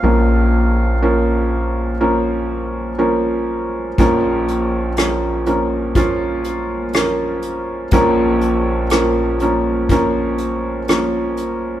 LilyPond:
<<
  \new Staff \with { instrumentName = "Clarinet" } { \time 4/4 \key bes \phrygian \tempo 4 = 61 f''2. r4 | r1 | r1 | }
  \new Staff \with { instrumentName = "Felt piano" } { \time 4/4 \key bes \phrygian << { <f bes des' bes'>4 <f bes des' bes'>4 <f bes des' bes'>4 <f bes des' bes'>4 | <f bes des' bes'>4 <f bes des' bes'>8 <f bes des' bes'>8 <f bes des' f'>4 <f bes des' bes'>4 | <f bes des' bes'>4 <f bes des' bes'>8 <f bes des' bes'>8 <f bes des' bes'>4 <f bes des' bes'>4 | } \\ { <bes,, bes,>1 | <bes,, bes,>1 | <bes,, bes,>1 | } >> }
  \new Staff \with { instrumentName = "Upright bass" } { \clef bass \time 4/4 \key bes \phrygian bes,,1 | bes,,1 | bes,,1 | }
  \new DrumStaff \with { instrumentName = "Drums" } \drummode { \time 4/4 r4 r4 r4 r4 | <hh bd>8 hh8 <hh ss>8 hh8 <hh bd>8 hh8 <hh ss>8 hh8 | <hh bd>8 hh8 <hh ss>8 hh8 <hh bd>8 hh8 <hh ss>8 hh8 | }
>>